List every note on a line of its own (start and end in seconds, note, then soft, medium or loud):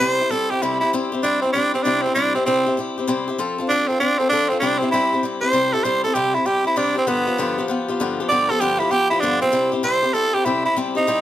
0.00 0.20 C3 medium
0.00 0.20 G3 medium
0.00 0.21 C4 medium
0.00 0.20 E4 medium
0.00 0.18 G4 medium
0.00 0.32 C5 loud
0.20 0.30 C4 soft
0.20 0.31 E4 soft
0.20 0.31 G4 soft
0.30 0.51 G3 medium
0.30 0.51 C4 medium
0.30 0.51 E4 medium
0.30 0.49 G4 medium
0.30 0.52 A4 loud
0.50 0.62 C4 soft
0.50 0.62 E4 soft
0.50 0.64 G4 loud
0.50 0.62 G4 medium
0.62 0.82 C3 medium
0.62 0.82 G3 medium
0.62 0.82 C4 medium
0.62 0.79 E4 medium
0.62 0.82 E4 medium
0.62 0.81 G4 medium
0.80 0.92 E4 loud
0.80 0.93 E4 medium
0.80 0.93 G4 medium
0.84 0.93 C4 soft
0.93 1.13 C3 medium
0.93 1.13 G3 medium
0.93 1.13 C4 medium
0.93 1.12 E4 medium
0.93 1.11 G4 medium
1.12 1.23 C4 medium
1.12 1.23 E4 medium
1.12 1.23 G4 medium
1.23 1.43 C3 medium
1.23 1.43 G3 medium
1.23 1.44 C4 medium
1.23 1.41 D4 loud
1.23 1.43 E4 medium
1.23 1.42 G4 medium
1.41 1.52 C4 medium
1.41 1.55 E4 medium
1.41 1.54 G4 medium
1.46 1.54 C4 soft
1.53 1.74 G3 medium
1.53 1.75 C4 medium
1.53 1.73 D4 loud
1.53 1.74 E4 medium
1.57 1.73 G4 medium
1.74 1.85 C4 medium
1.74 1.85 C4 soft
1.74 1.85 E4 soft
1.74 1.85 G4 medium
1.83 2.05 C3 medium
1.83 2.05 G3 medium
1.83 2.06 C4 medium
1.83 2.04 D4 loud
1.83 2.05 E4 medium
1.87 2.05 G4 medium
2.02 2.14 C4 loud
2.02 2.16 G4 soft
2.06 2.15 C4 soft
2.06 2.16 E4 soft
2.14 2.36 C3 medium
2.14 2.36 G3 medium
2.14 2.36 C4 medium
2.14 2.34 D4 loud
2.14 2.35 E4 medium
2.14 2.34 G4 loud
2.35 2.45 C4 medium
2.35 2.46 C4 medium
2.35 2.46 E4 soft
2.35 2.46 G4 medium
2.45 2.67 C3 medium
2.45 2.67 G3 medium
2.45 2.76 C4 loud
2.45 2.67 C4 medium
2.45 2.66 E4 medium
2.45 2.65 G4 medium
2.66 2.77 C4 soft
2.66 2.78 E4 medium
2.66 2.78 G4 medium
2.77 2.97 G3 medium
2.77 2.98 C4 medium
2.77 2.98 E4 medium
2.77 2.96 G4 medium
2.98 3.07 C4 soft
2.98 3.08 E4 medium
2.98 3.08 G4 medium
3.07 3.28 C3 loud
3.07 3.28 G3 medium
3.07 3.28 C4 medium
3.07 3.28 E4 loud
3.07 3.26 G4 medium
3.28 3.38 C4 soft
3.28 3.39 E4 medium
3.28 3.39 G4 medium
3.38 3.59 F3 medium
3.38 3.59 C4 loud
3.38 3.59 F4 medium
3.38 3.57 A4 loud
3.58 3.70 C4 medium
3.58 3.70 F4 medium
3.58 3.70 A4 medium
3.69 3.90 F3 medium
3.69 3.90 C4 medium
3.69 3.89 D4 loud
3.69 3.90 F4 medium
3.69 3.89 A4 loud
3.88 3.99 C4 medium
3.88 4.01 F4 soft
3.88 4.01 A4 medium
3.92 4.00 C4 soft
4.00 4.20 F3 medium
4.00 4.21 C4 medium
4.00 4.20 D4 loud
4.00 4.20 F4 medium
4.00 4.19 A4 medium
4.19 4.28 C4 loud
4.19 4.31 C4 soft
4.19 4.31 F4 soft
4.19 4.31 A4 medium
4.29 4.51 F3 medium
4.29 4.52 C4 medium
4.29 4.50 D4 loud
4.29 4.51 F4 medium
4.29 4.50 A4 loud
4.49 4.59 C4 medium
4.49 4.63 F4 medium
4.49 4.62 A4 medium
4.53 4.61 C4 soft
4.60 4.82 C3 medium
4.60 4.82 G3 medium
4.60 4.82 C4 medium
4.60 4.80 D4 loud
4.60 4.82 E4 medium
4.60 4.80 G4 medium
4.78 4.91 C4 medium
4.78 4.93 G4 medium
4.83 4.92 C4 soft
4.83 4.93 E4 medium
4.91 5.13 C3 medium
4.91 5.13 G3 medium
4.91 5.13 C4 medium
4.91 5.22 E4 loud
4.91 5.12 E4 medium
4.91 5.11 G4 loud
5.13 5.23 C4 soft
5.13 5.24 E4 soft
5.13 5.24 G4 soft
5.23 5.43 G3 medium
5.23 5.43 C4 medium
5.23 5.42 E4 medium
5.23 5.40 G4 medium
5.41 5.53 C4 soft
5.41 5.53 E4 soft
5.41 5.53 G4 soft
5.41 5.75 C5 loud
5.53 5.73 C3 medium
5.53 5.74 G3 medium
5.53 5.74 C4 medium
5.53 5.73 E4 medium
5.53 5.72 G4 loud
5.73 5.84 C4 soft
5.73 5.85 E4 soft
5.73 5.85 G4 medium
5.73 5.85 A4 loud
5.84 6.05 C3 medium
5.84 6.05 G3 medium
5.84 6.05 C4 medium
5.84 6.04 E4 medium
5.84 6.03 G4 medium
5.84 6.03 C5 loud
6.04 6.14 C4 soft
6.04 6.15 E4 soft
6.04 6.15 G4 medium
6.04 6.16 A4 medium
6.14 6.35 C3 medium
6.14 6.35 G3 medium
6.14 6.36 C4 medium
6.14 6.34 E4 medium
6.14 6.36 G4 loud
6.14 6.33 G4 medium
6.34 6.45 C4 soft
6.34 6.48 E4 medium
6.34 6.46 E4 soft
6.34 6.46 G4 soft
6.46 6.66 G3 medium
6.46 6.66 C4 medium
6.46 6.64 E4 medium
6.46 6.66 G4 loud
6.46 6.63 G4 medium
6.64 6.76 C4 soft
6.64 6.76 E4 soft
6.64 6.79 E4 medium
6.64 6.76 G4 medium
6.76 6.96 C3 medium
6.76 6.97 G3 medium
6.76 6.96 C4 medium
6.76 6.96 D4 loud
6.76 6.95 E4 medium
6.76 6.94 G4 medium
6.95 7.07 C4 soft
6.95 7.09 C4 medium
6.95 7.08 E4 medium
6.95 7.07 G4 medium
7.07 7.27 G2 medium
7.07 7.27 D3 medium
7.07 7.28 F3 medium
7.07 7.67 B3 loud
7.07 7.27 B3 medium
7.07 7.26 F4 medium
7.07 7.25 G4 medium
7.27 7.38 F3 soft
7.27 7.38 B3 soft
7.27 7.39 F4 medium
7.27 7.38 G4 medium
7.38 7.58 G2 medium
7.38 7.58 D3 medium
7.38 7.59 F3 medium
7.38 7.58 B3 medium
7.38 7.57 F4 medium
7.38 7.57 G4 medium
7.58 7.67 F3 medium
7.58 7.68 B3 medium
7.58 7.69 F4 medium
7.58 7.69 G4 medium
7.68 7.89 F3 medium
7.68 7.89 B3 medium
7.68 7.88 F4 medium
7.68 7.87 G4 medium
7.88 8.00 F3 soft
7.88 8.00 B3 medium
7.88 8.00 F4 medium
7.88 8.00 G4 medium
8.00 8.20 G2 medium
8.00 8.20 D3 medium
8.00 8.20 F3 loud
8.00 8.20 B3 loud
8.00 8.19 F4 loud
8.00 8.19 G4 medium
8.20 8.31 F3 medium
8.20 8.30 B3 soft
8.20 8.31 F4 medium
8.20 8.31 G4 medium
8.29 8.50 G2 medium
8.29 8.51 D3 medium
8.29 8.51 F3 medium
8.29 8.51 B3 medium
8.29 8.50 F4 medium
8.29 8.49 G4 medium
8.29 8.51 D5 loud
8.50 8.60 F3 soft
8.50 8.61 B3 medium
8.50 8.61 F4 medium
8.50 8.61 G4 medium
8.50 8.62 A4 loud
8.60 8.81 G2 medium
8.60 8.81 D3 medium
8.60 8.81 F3 medium
8.60 8.81 B3 medium
8.60 8.80 F4 medium
8.60 8.81 G4 loud
8.60 8.79 G4 medium
8.79 8.90 F3 soft
8.79 8.90 B3 soft
8.79 8.93 E4 loud
8.79 8.91 F4 medium
8.79 8.92 G4 medium
8.91 9.11 F3 medium
8.91 9.12 B3 medium
8.91 9.11 F4 medium
8.91 9.10 G4 loud
8.91 9.10 G4 medium
9.10 9.22 F3 soft
9.10 9.22 B3 soft
9.10 9.21 E4 loud
9.10 9.23 F4 medium
9.10 9.23 G4 medium
9.20 9.43 G2 medium
9.20 9.43 D3 medium
9.20 9.42 F3 medium
9.20 9.41 B3 medium
9.20 9.41 D4 loud
9.20 9.40 F4 loud
9.20 9.40 G4 medium
9.41 9.52 F3 medium
9.41 9.52 B3 soft
9.41 9.72 C4 loud
9.41 9.53 F4 medium
9.41 9.52 G4 medium
9.52 9.73 C3 medium
9.52 9.73 G3 medium
9.52 9.73 C4 medium
9.52 9.72 E4 loud
9.52 9.71 G4 medium
9.72 9.82 C4 soft
9.72 9.83 E4 medium
9.72 9.83 G4 medium
9.83 10.04 C3 medium
9.83 10.04 G3 medium
9.83 10.03 C4 medium
9.83 10.02 E4 medium
9.83 10.01 G4 medium
9.83 10.15 C5 loud
10.02 10.13 C4 soft
10.02 10.14 E4 soft
10.02 10.14 G4 medium
10.14 10.34 G3 medium
10.14 10.35 C4 medium
10.14 10.34 E4 medium
10.14 10.33 G4 medium
10.14 10.35 A4 loud
10.34 10.45 C4 soft
10.34 10.45 E4 soft
10.34 10.47 G4 medium
10.34 10.46 G4 medium
10.45 10.66 C3 medium
10.45 10.66 G3 medium
10.45 10.66 C4 medium
10.45 10.65 E4 medium
10.45 10.64 G4 medium
10.65 10.76 C4 soft
10.65 10.76 E4 loud
10.65 10.76 E4 soft
10.65 10.77 G4 medium
10.76 10.96 C3 medium
10.76 10.96 G3 medium
10.76 10.96 C4 medium
10.76 10.95 E4 medium
10.76 10.94 G4 loud
10.95 11.07 C4 soft
10.95 11.21 D#4 medium
10.95 11.07 E4 medium
10.95 11.07 G4 medium
11.07 11.21 C3 medium
11.07 11.21 G3 medium
11.07 11.21 C4 medium
11.07 11.21 E4 medium
11.07 11.21 G4 loud